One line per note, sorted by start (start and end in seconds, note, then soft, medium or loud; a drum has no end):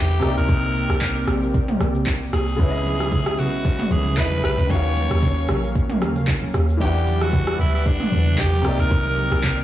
0.00 0.21 E2 medium
0.00 0.21 D3 medium
0.00 0.17 E3 medium
0.00 0.20 G3 medium
0.00 0.21 G3 medium
0.00 0.20 B3 medium
0.00 0.19 D4 medium
0.00 0.20 E4 medium
0.00 0.37 G4 loud
0.00 0.21 F#5 medium
0.10 shaker soft
0.19 0.36 C2 loud
0.19 2.28 C3 medium
0.19 2.29 A#3 medium
0.19 2.57 A#3 medium
0.19 2.57 C4 medium
0.19 2.57 G4 loud
0.19 2.57 D5 medium
0.19 cross-stick loud
0.19 shaker loud
0.24 2.30 D#4 medium
0.24 2.31 D5 medium
0.37 0.48 C#2 medium
0.37 1.39 A#4 loud
0.37 shaker medium
0.49 0.87 C2 loud
0.49 kick loud
0.49 shaker medium
0.63 shaker soft
0.75 shaker medium
0.89 1.25 C2 loud
0.89 cross-stick medium
0.89 shaker medium
1.01 kick medium
1.01 clap medium
1.01 shaker medium
1.16 shaker medium
1.28 1.77 A#1 medium
1.28 cross-stick medium
1.28 shaker loud
1.43 shaker medium
1.54 kick loud
1.54 shaker medium
1.68 mid tom medium
1.68 shaker medium
1.80 2.30 C2 medium
1.80 cross-stick medium
1.80 shaker loud
1.95 shaker medium
2.07 kick medium
2.07 clap medium
2.07 shaker medium
2.21 shaker soft
2.33 2.58 C2 medium
2.33 3.41 G#4 loud
2.33 cross-stick loud
2.33 shaker loud
2.48 shaker medium
2.56 3.40 C#2 loud
2.56 4.13 C#3 medium
2.56 4.68 G#3 medium
2.56 4.14 B3 medium
2.56 4.68 B3 medium
2.56 4.68 C#4 medium
2.56 4.68 E4 medium
2.56 kick loud
2.56 shaker medium
2.61 4.15 E4 medium
2.61 2.69 C#5 medium
2.70 4.18 D#5 medium
2.70 shaker soft
2.86 high conga medium
2.86 shaker medium
3.00 cross-stick medium
3.00 high conga medium
3.00 shaker medium
3.12 kick medium
3.12 low conga medium
3.12 shaker medium
3.26 cross-stick loud
3.26 shaker medium
3.38 3.76 B1 loud
3.38 3.93 F#4 loud
3.38 high conga medium
3.38 low conga medium
3.38 shaker loud
3.53 shaker medium
3.65 kick loud
3.65 shaker medium
3.79 mid tom medium
3.79 shaker medium
3.91 4.19 C#2 loud
3.91 4.20 G#4 medium
3.91 high conga medium
3.91 shaker medium
4.05 high conga medium
4.05 shaker soft
4.16 4.42 E2 loud
4.16 4.69 C#3 soft
4.16 4.70 B3 soft
4.16 4.71 E4 soft
4.16 4.44 B4 loud
4.16 4.71 D#5 medium
4.16 kick medium
4.16 clap medium
4.16 low conga medium
4.16 shaker medium
4.31 high conga medium
4.31 shaker soft
4.44 4.57 B1 medium
4.44 4.72 B4 loud
4.44 cross-stick medium
4.44 shaker medium
4.58 4.69 C#2 medium
4.58 shaker medium
4.67 5.08 D#2 loud
4.67 6.75 D#3 medium
4.67 6.78 F#3 medium
4.67 6.78 A#3 medium
4.67 6.76 C#4 medium
4.67 6.78 C#4 medium
4.67 5.76 C#5 loud
4.67 6.78 F5 medium
4.67 kick loud
4.67 shaker medium
4.72 6.78 F#4 medium
4.72 6.79 F5 medium
4.84 shaker medium
4.96 high conga medium
4.96 shaker medium
5.10 5.46 D#2 loud
5.10 cross-stick medium
5.10 high conga medium
5.10 shaker medium
5.22 kick loud
5.22 low conga medium
5.22 shaker medium
5.37 shaker medium
5.49 6.03 A#1 medium
5.49 cross-stick loud
5.49 high conga medium
5.49 low conga medium
5.49 shaker medium
5.64 shaker medium
5.75 kick loud
5.75 shaker medium
5.90 mid tom medium
5.90 shaker medium
6.01 6.51 D#2 medium
6.01 cross-stick loud
6.01 high conga medium
6.01 shaker medium
6.16 high conga medium
6.16 shaker medium
6.28 kick loud
6.28 clap medium
6.28 low conga medium
6.28 shaker medium
6.42 high conga medium
6.42 shaker soft
6.54 6.79 D#2 medium
6.54 cross-stick medium
6.54 shaker medium
6.69 shaker medium
6.77 7.55 E2 loud
6.77 8.59 E3 medium
6.77 8.63 E3 medium
6.77 8.63 G3 medium
6.77 8.63 B3 medium
6.77 8.61 D4 medium
6.77 7.24 G4 loud
6.77 9.64 D5 medium
6.77 8.63 F#5 medium
6.77 kick loud
6.77 shaker medium
6.83 6.88 F#4 medium
6.83 8.63 F#5 medium
6.89 8.65 G3 medium
6.95 shaker soft
7.07 high conga medium
7.07 shaker medium
7.21 7.60 F#4 loud
7.21 cross-stick medium
7.21 high conga medium
7.21 shaker medium
7.33 kick medium
7.33 low conga medium
7.33 shaker medium
7.47 cross-stick loud
7.47 shaker medium
7.59 7.97 D2 medium
7.59 7.73 E4 medium
7.59 high conga medium
7.59 low conga medium
7.59 shaker loud
7.74 7.88 E4 medium
7.74 shaker medium
7.86 8.41 D4 loud
7.86 kick loud
7.86 shaker medium
8.00 mid tom medium
8.00 shaker medium
8.12 8.37 E2 loud
8.12 high conga medium
8.12 shaker medium
8.26 high conga medium
8.26 shaker medium
8.38 8.63 E2 loud
8.38 8.82 G4 loud
8.38 kick medium
8.38 clap loud
8.38 low conga medium
8.38 shaker medium
8.53 high conga medium
8.53 shaker soft
8.62 8.78 C2 medium
8.62 9.64 C3 medium
8.62 9.64 D#3 medium
8.62 9.64 A#3 medium
8.62 9.64 C4 medium
8.62 9.64 G4 medium
8.62 cross-stick medium
8.62 shaker medium
8.67 9.64 D#4 medium
8.67 9.64 D5 medium
8.79 8.90 C#2 medium
8.79 9.64 A#4 loud
8.79 shaker medium
8.91 9.29 C2 loud
8.91 kick loud
8.91 shaker medium
9.06 high conga medium
9.06 shaker medium
9.18 high conga medium
9.18 shaker medium
9.32 9.64 C2 loud
9.32 cross-stick medium
9.32 high conga medium
9.32 shaker medium
9.43 kick loud
9.43 clap medium
9.43 low conga medium
9.43 shaker medium
9.58 shaker medium